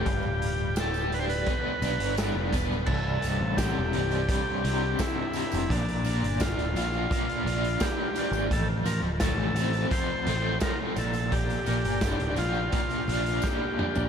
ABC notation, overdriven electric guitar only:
X:1
M:4/4
L:1/8
Q:1/4=85
K:Bblyd
V:1 name="Overdriven electric guitar"
G,,2 G D =B, D G, B, | C,, G,, C, G, G,, C, G,, C, | B,, B, D F B, D B, D | F,, F, A, C F, A, F, B,, |
B,, B, D F B, D B, D |]